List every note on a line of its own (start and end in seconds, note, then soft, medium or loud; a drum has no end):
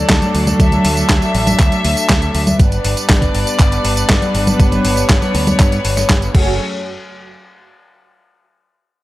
0.00 2.56 F#3 medium
0.00 2.56 A3 medium
0.00 2.56 D4 medium
0.00 2.56 A4 medium
0.00 0.56 D5 medium
0.10 0.19 D2 medium
0.10 kick loud
0.10 snare loud
0.10 clap medium
0.10 closed hi-hat medium
0.10 tambourine medium
0.22 closed hi-hat soft
0.22 tambourine soft
0.22 high conga medium
0.35 0.53 D2 medium
0.35 open hi-hat loud
0.47 closed hi-hat soft
0.47 tambourine medium
0.47 high conga medium
0.60 0.78 D2 medium
0.60 2.58 E5 medium
0.60 kick loud
0.60 closed hi-hat medium
0.60 tambourine medium
0.72 closed hi-hat soft
0.72 tambourine soft
0.72 high conga medium
0.85 1.03 D2 medium
0.85 open hi-hat loud
0.97 closed hi-hat soft
0.97 tambourine medium
1.10 1.19 D2 medium
1.10 kick loud
1.10 snare loud
1.10 clap medium
1.10 closed hi-hat medium
1.10 tambourine medium
1.22 closed hi-hat soft
1.22 tambourine soft
1.35 1.53 A1 medium
1.35 open hi-hat loud
1.47 closed hi-hat soft
1.47 tambourine medium
1.47 high conga medium
1.60 1.69 D2 medium
1.60 kick loud
1.60 clap medium
1.60 closed hi-hat medium
1.60 tambourine medium
1.72 closed hi-hat soft
1.72 tambourine soft
1.85 1.94 D2 loud
1.85 open hi-hat loud
1.97 closed hi-hat soft
1.97 tambourine medium
2.10 2.28 D2 medium
2.10 kick loud
2.10 snare loud
2.10 clap medium
2.10 closed hi-hat medium
2.10 tambourine medium
2.22 closed hi-hat soft
2.22 tambourine soft
2.35 2.53 D2 loud
2.35 open hi-hat loud
2.47 closed hi-hat soft
2.47 tambourine medium
2.47 high conga medium
2.59 2.78 G1 loud
2.59 6.31 G3 medium
2.59 6.31 B3 medium
2.59 6.31 D4 medium
2.59 6.31 B4 medium
2.59 4.58 D5 medium
2.59 kick loud
2.59 closed hi-hat medium
2.59 tambourine medium
2.72 closed hi-hat soft
2.72 tambourine soft
2.85 2.94 G1 loud
2.85 open hi-hat loud
2.97 closed hi-hat soft
2.97 tambourine medium
3.10 3.28 G1 loud
3.10 kick loud
3.10 snare loud
3.10 clap medium
3.10 closed hi-hat medium
3.10 tambourine medium
3.22 kick medium
3.22 closed hi-hat soft
3.22 tambourine soft
3.35 3.44 G1 medium
3.35 open hi-hat loud
3.47 closed hi-hat soft
3.47 tambourine medium
3.60 3.78 G1 medium
3.60 kick loud
3.60 clap medium
3.60 closed hi-hat medium
3.60 tambourine medium
3.72 closed hi-hat soft
3.72 tambourine soft
3.85 4.03 G1 medium
3.85 open hi-hat loud
3.97 closed hi-hat soft
3.97 tambourine medium
4.10 4.19 G1 medium
4.10 kick loud
4.10 snare loud
4.10 clap medium
4.10 closed hi-hat medium
4.10 tambourine medium
4.22 closed hi-hat soft
4.22 tambourine soft
4.22 high conga medium
4.35 4.53 G1 medium
4.35 open hi-hat loud
4.47 closed hi-hat soft
4.47 tambourine medium
4.47 high conga medium
4.59 4.78 G1 medium
4.59 6.33 C#5 medium
4.59 kick loud
4.59 closed hi-hat medium
4.59 tambourine medium
4.72 closed hi-hat soft
4.72 tambourine soft
4.72 high conga medium
4.85 5.03 G1 medium
4.85 open hi-hat loud
4.97 closed hi-hat soft
4.97 tambourine medium
5.10 5.19 G1 medium
5.10 kick loud
5.10 snare loud
5.10 clap loud
5.10 closed hi-hat medium
5.10 tambourine soft
5.22 closed hi-hat soft
5.22 tambourine soft
5.22 high conga medium
5.35 5.53 D2 medium
5.35 open hi-hat loud
5.47 closed hi-hat soft
5.47 tambourine medium
5.47 high conga medium
5.60 5.78 G2 medium
5.60 kick loud
5.60 clap medium
5.60 closed hi-hat medium
5.60 tambourine soft
5.72 closed hi-hat soft
5.72 tambourine soft
5.85 6.03 G1 medium
5.85 open hi-hat loud
5.97 snare soft
5.97 closed hi-hat soft
5.97 tambourine medium
6.10 6.28 G1 medium
6.10 kick loud
6.10 snare loud
6.10 clap medium
6.10 closed hi-hat medium
6.10 tambourine medium
6.22 closed hi-hat soft
6.22 tambourine soft
6.34 6.58 F#1 medium
6.34 6.58 F#3 medium
6.34 6.58 A3 medium
6.34 6.58 C#4 medium
6.34 6.53 F#4 medium
6.34 6.58 G#4 medium
6.34 6.58 C#5 medium
6.34 kick loud
6.34 crash medium